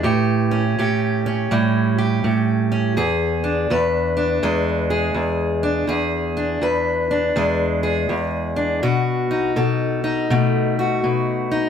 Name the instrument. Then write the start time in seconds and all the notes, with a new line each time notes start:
steel-string acoustic guitar
Already playing: E3
0.03 A2 G4
0.51 C#4
0.79 A2 G4
1.26 C#4
1.51 A2 G3
1.98 G4
2.24 A2
2.72 C#4
2.97 E2 G#4
3.44 D4
3.70 E2 B4
4.17 D4
4.43 E2 G#3
4.90 G#4
5.14 E2
5.63 D4
5.87 E2 G#4
6.37 D4
6.62 E2 B4
7.11 D4
7.36 E2 G#3
7.83 G#4
8.09 E2
8.56 D4
8.83 B2 F#4
9.31 D#4
9.56 B2 A4
10.04 D#4
10.30 B2 A3
10.79 F#4
11.04 B2
11.51 D#4